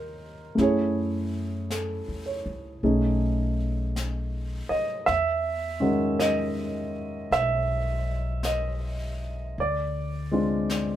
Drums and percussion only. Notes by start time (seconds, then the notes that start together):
0.58 brush sweep, snare
1.71 brush sweep, snare, hi-hat pedal
2.84 brush sweep
3.96 brush sweep, snare, hi-hat pedal
5.07 brush sweep, snare
6.20 brush sweep, snare, hi-hat pedal
7.32 brush sweep, snare
8.43 brush sweep, snare, hi-hat pedal
9.56 brush sweep
10.70 brush sweep, snare, hi-hat pedal